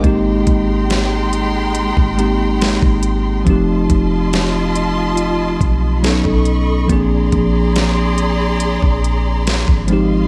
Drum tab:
HH |x-x-x-x-x-x-x-x-|x-x-x-x-x-x-x-x-|x-x-x-x-x-x-x-x-|
SD |----o-------o---|----o-------o---|----o-------o---|
BD |o-o------o---o--|o-o-------o--o--|o-o------o---o--|